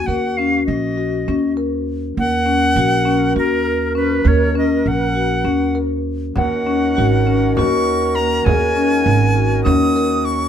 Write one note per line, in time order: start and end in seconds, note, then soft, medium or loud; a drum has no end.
0.00 1.87 F#4 medium
0.06 0.64 D#2 medium
0.06 0.32 A#4 medium
0.06 0.38 F#5 medium
0.37 0.86 C#4 medium
0.37 0.65 F5 medium
0.66 1.24 A#1 medium
0.66 1.53 D#5 medium
0.97 1.21 F#4 medium
1.28 2.14 D#2 medium
1.28 1.52 C#4 medium
1.57 2.05 A#4 medium
2.17 2.73 D#2 medium
2.17 6.02 A#4 medium
2.17 3.33 F#5 loud
2.46 2.70 C#4 medium
2.76 3.32 A#1 medium
2.76 3.00 F#4 medium
3.05 3.30 C#4 medium
3.36 4.22 D#2 medium
3.36 3.83 F#4 medium
3.36 3.93 A#4 medium
3.95 4.19 C#4 medium
3.95 4.29 B4 medium
4.25 4.81 D#2 medium
4.25 4.49 A#4 medium
4.25 4.57 C#5 medium
4.55 5.03 C#4 medium
4.55 4.89 D#5 medium
4.86 5.42 A#1 medium
4.86 5.77 F#5 medium
5.15 5.39 F#4 medium
5.44 6.32 D#2 medium
5.44 5.69 C#4 medium
5.75 6.23 A#4 medium
6.36 6.93 D#2 medium
6.36 10.48 D#3 medium
6.36 10.48 C#4 medium
6.36 10.48 F#4 medium
6.36 10.24 A#4 medium
6.36 7.53 F#5 medium
6.36 7.83 F#5 medium
6.36 frame drum soft
6.66 6.90 C#4 medium
6.97 7.54 G#1 medium
6.97 7.21 F#4 medium
7.27 7.51 C#4 medium
7.56 8.43 D#2 medium
7.56 8.05 F#4 medium
7.56 8.17 C#6 medium
7.56 frame drum medium
8.15 8.41 A#3 medium
8.15 8.46 A#5 medium
8.45 9.02 D#2 medium
8.45 8.70 G#4 medium
8.45 9.63 G#5 medium
8.45 frame drum medium
8.76 9.23 C#4 medium
9.06 9.62 G#1 medium
9.36 9.59 F#4 medium
9.63 10.48 D#2 medium
9.63 9.89 C#4 medium
9.63 10.26 D#6 medium
9.63 frame drum soft
9.96 10.43 A#4 medium
10.25 10.48 C#6 medium